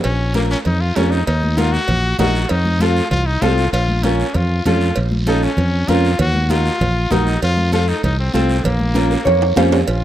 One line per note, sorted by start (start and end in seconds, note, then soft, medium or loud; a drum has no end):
0.04 0.54 A#1 loud
0.04 0.33 C#4 loud
0.04 cowbell loud
0.04 long guiro medium
0.34 0.42 A#3 medium
0.34 0.56 C#4 medium
0.34 0.57 F4 medium
0.34 0.57 A#4 medium
0.34 cowbell medium
0.34 high conga medium
0.34 short guiro medium
0.51 0.58 C#4 loud
0.51 short guiro medium
0.65 0.91 F2 medium
0.65 0.82 D#4 loud
0.65 cowbell medium
0.65 low conga medium
0.65 long guiro medium
0.81 0.97 F4 medium
0.96 1.22 F2 medium
0.96 1.12 C#4 loud
0.96 1.18 C#4 medium
0.96 1.18 F4 medium
0.96 1.19 A#4 loud
0.96 cowbell medium
0.96 high conga medium
0.96 low timbale medium
0.96 short guiro medium
1.11 1.26 D#4 medium
1.11 short guiro medium
1.27 1.77 D#2 loud
1.27 1.59 D#4 loud
1.27 cowbell loud
1.27 long guiro medium
1.43 high conga medium
1.57 1.79 D#4 medium
1.57 1.74 F4 loud
1.57 1.79 F#4 medium
1.57 1.79 A#4 medium
1.57 cowbell medium
1.57 high conga medium
1.57 short guiro medium
1.72 2.19 F#4 loud
1.72 short guiro medium
1.88 2.13 A#1 medium
1.88 cowbell medium
1.88 low conga medium
1.88 long guiro medium
2.19 2.44 A#1 medium
2.19 2.41 D#4 medium
2.19 2.41 F#4 medium
2.19 2.52 F#4 loud
2.19 2.41 A#4 loud
2.19 cowbell medium
2.19 high conga medium
2.19 low conga medium
2.19 low timbale medium
2.19 short guiro medium
2.35 short guiro medium
2.49 3.00 F2 loud
2.49 2.83 D#4 loud
2.49 cowbell loud
2.49 long guiro medium
2.65 high conga medium
2.80 3.03 C4 medium
2.80 3.03 F4 medium
2.80 3.10 F4 loud
2.80 3.03 A4 medium
2.80 cowbell medium
2.80 high conga medium
2.80 short guiro medium
2.97 short guiro medium
3.11 3.36 C2 medium
3.11 3.28 F4 loud
3.11 cowbell medium
3.11 low conga medium
3.11 long guiro medium
3.26 3.43 D#4 loud
3.42 3.67 C2 medium
3.42 3.64 C4 medium
3.42 3.72 F4 loud
3.42 3.64 F4 medium
3.42 3.64 A4 loud
3.42 cowbell medium
3.42 high conga medium
3.42 low timbale medium
3.42 short guiro medium
3.58 short guiro medium
3.72 4.22 A#1 loud
3.72 4.05 F4 loud
3.72 cowbell loud
3.72 long guiro medium
3.89 high conga medium
4.03 4.37 C#4 medium
4.03 4.26 C#4 medium
4.03 4.26 F4 medium
4.03 4.26 A#4 medium
4.03 cowbell medium
4.03 high conga medium
4.03 short guiro medium
4.20 short guiro medium
4.34 4.59 F2 medium
4.34 4.65 F4 loud
4.34 cowbell medium
4.34 low conga medium
4.34 long guiro medium
4.66 4.91 F2 medium
4.66 4.87 C#4 medium
4.66 4.98 F4 loud
4.66 4.88 F4 medium
4.66 4.88 A4 medium
4.66 cowbell medium
4.66 high conga medium
4.66 low conga medium
4.66 short guiro medium
4.81 short guiro medium
4.96 5.46 A#1 loud
4.96 cowbell loud
4.96 long guiro medium
5.11 high conga medium
5.27 5.49 C#4 medium
5.27 5.46 D#4 loud
5.27 5.49 F4 medium
5.27 5.49 A4 medium
5.27 cowbell medium
5.27 high conga medium
5.27 short guiro medium
5.43 5.90 C#4 loud
5.43 short guiro medium
5.57 5.83 F2 medium
5.57 cowbell medium
5.57 low conga medium
5.57 long guiro medium
5.88 6.13 F2 medium
5.88 6.10 C#4 medium
5.88 6.10 F4 medium
5.88 6.19 F4 loud
5.88 6.10 A#4 loud
5.88 cowbell medium
5.88 high conga medium
5.88 short guiro medium
6.05 short guiro medium
6.19 6.69 D#2 loud
6.19 6.51 F#4 loud
6.19 cowbell loud
6.19 low conga medium
6.19 long guiro medium
6.34 high conga medium
6.49 6.71 D#4 medium
6.49 7.13 F4 loud
6.49 6.72 F#4 medium
6.49 6.72 A#4 medium
6.49 cowbell medium
6.49 high conga medium
6.49 short guiro medium
6.66 short guiro medium
6.80 7.06 A#1 medium
6.80 cowbell medium
6.80 low conga medium
6.80 long guiro medium
7.10 7.36 A#1 medium
7.10 7.33 D#4 medium
7.10 7.42 D#4 loud
7.10 7.33 F#4 medium
7.10 7.33 A#4 loud
7.10 cowbell medium
7.10 high conga medium
7.10 low conga medium
7.10 short guiro medium
7.27 short guiro medium
7.42 7.92 F2 loud
7.42 7.72 F4 loud
7.42 cowbell loud
7.42 long guiro medium
7.57 high conga medium
7.72 7.94 C4 medium
7.72 7.94 F4 medium
7.72 7.90 F4 loud
7.72 7.95 A4 medium
7.72 cowbell medium
7.72 high conga medium
7.72 short guiro medium
7.88 8.04 D#4 loud
7.88 short guiro medium
8.04 8.28 C2 medium
8.04 8.18 D#4 medium
8.04 cowbell medium
8.04 low conga medium
8.04 long guiro medium
8.20 8.33 C4 medium
8.33 8.59 C2 medium
8.33 8.56 C4 medium
8.33 8.66 C4 medium
8.33 8.56 F4 medium
8.33 8.56 A4 loud
8.33 cowbell medium
8.33 high conga medium
8.33 short guiro medium
8.49 short guiro medium
8.64 9.15 A#1 loud
8.64 9.73 A#3 medium
8.64 cowbell loud
8.64 low conga medium
8.64 long guiro medium
8.80 high conga medium
8.94 9.17 C#4 medium
8.94 9.17 F4 medium
8.94 9.10 A#4 medium
8.94 cowbell medium
8.94 high conga medium
8.94 short guiro medium
9.11 9.25 A#4 medium
9.11 short guiro medium
9.25 9.52 F2 medium
9.25 9.55 C#5 medium
9.25 cowbell medium
9.25 low conga medium
9.25 high timbale medium
9.25 long guiro medium
9.42 high timbale medium
9.56 9.82 F2 medium
9.56 9.79 C#4 medium
9.56 9.79 F4 medium
9.56 9.79 C5 loud
9.56 9.86 F5 medium
9.56 cowbell medium
9.56 high conga medium
9.56 low timbale medium
9.56 short guiro medium
9.72 low timbale loud
9.72 short guiro medium
9.88 10.04 A#1 medium
9.88 10.04 F4 medium
9.88 cowbell loud
9.88 long guiro medium